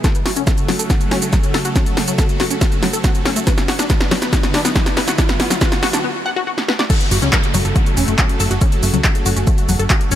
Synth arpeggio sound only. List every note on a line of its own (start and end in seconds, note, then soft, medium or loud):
0.04 0.08 A4 medium
0.26 0.32 F#4 medium
0.36 0.42 C#4 medium
0.47 0.51 A3 medium
0.69 0.71 F#3 medium
0.79 0.83 A4 medium
0.90 0.92 F#4 medium
1.11 1.17 C#4 loud
1.22 1.28 A3 medium
1.33 1.37 F#3 medium
1.54 1.57 A4 loud
1.65 1.69 F#4 medium
1.76 1.78 C#4 medium
1.97 2.01 A3 medium
2.08 2.12 F#3 medium
2.19 2.25 A4 loud
2.40 2.44 F#4 loud
2.51 2.55 C#4 medium
2.61 2.64 A3 medium
2.83 2.87 F#3 medium
2.93 2.98 A4 medium
3.04 3.10 F#4 loud
3.26 3.30 C#4 loud
3.36 3.39 A3 loud
3.47 3.51 B4 medium
3.68 3.75 F#4 medium
3.79 3.85 D4 medium
3.90 3.94 B3 medium
4.11 4.14 F#3 loud
4.22 4.26 B4 medium
4.33 4.35 F#4 medium
4.54 4.60 D4 loud
4.65 4.71 B3 medium
4.76 4.80 F#3 medium
4.97 5.00 B4 loud
5.08 5.12 F#4 medium
5.19 5.21 D4 medium
5.40 5.44 B3 medium
5.51 5.55 F#3 medium
5.61 5.67 B4 loud
5.83 5.87 F#4 loud
5.93 5.98 D4 medium
6.04 6.07 B3 medium
6.26 6.30 F#5 loud
6.36 6.40 F#4 loud
6.47 6.51 F#4 medium
6.69 6.71 B4 medium
6.79 6.82 D5 loud
6.90 6.94 A4 medium
7.12 7.18 F#4 medium
7.22 7.28 C#4 medium
7.33 7.37 A3 medium
7.54 7.57 F#3 loud
7.65 7.69 A4 medium
7.76 7.78 F#4 medium
7.97 8.03 C#4 loud
8.08 8.14 A3 medium
8.19 8.23 F#3 medium
8.40 8.42 A4 loud
8.51 8.55 F#4 medium
8.61 8.64 C#4 medium
8.83 8.87 A3 medium
8.94 8.98 F#3 medium
9.04 9.10 A4 loud
9.26 9.30 F#4 loud
9.36 9.40 C#4 medium
9.47 9.50 A3 medium
9.69 9.73 F#3 medium
9.79 9.83 A4 medium
9.90 9.96 F#4 loud
10.12 10.15 C#4 loud